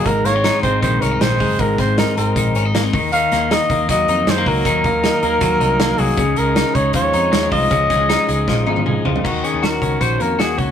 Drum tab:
CC |----------------|----------------|----------------|----------------|
HH |x-x-x-x-x-x-x-o-|x-x-x-x-x-x-x-o-|x-x-x-x-x-x-x-o-|x-x-x-x-x-x-x-o-|
SD |--o-o-------o---|--o-o-------o---|--o-o-------o---|----o-------o---|
T1 |----------------|----------------|----------------|----------------|
T2 |----------------|----------------|----------------|----------------|
FT |----------------|----------------|----------------|----------------|
BD |o-----o-o-----o-|o-o-----o-----o-|------o-o-----o-|o-o-----o-------|

CC |----------------|----------------|x---------------|
HH |x-x-x-x-x-x-x-o-|x-x-x-x---------|--x-x-x-x-x-x-x-|
SD |----o-------o---|--o-o---o-------|----o-------o---|
T1 |----------------|----------oo----|----------------|
T2 |----------------|------------o---|----------------|
FT |----------------|--------------oo|----------------|
BD |o-----o-o-----o-|o-o-----o-------|o-----o-o-----o-|